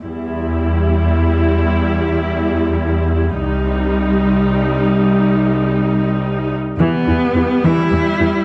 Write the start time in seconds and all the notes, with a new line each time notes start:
0.04 E2 G3 E4
3.42 C2 G3 D#4
6.79 E2 E3 G3 B3
7.08 E2 E3 E4
7.36 E2 E3 E4
7.64 E2 E3 E4
7.92 E2 E3 G3
8.20 E2 E3 E4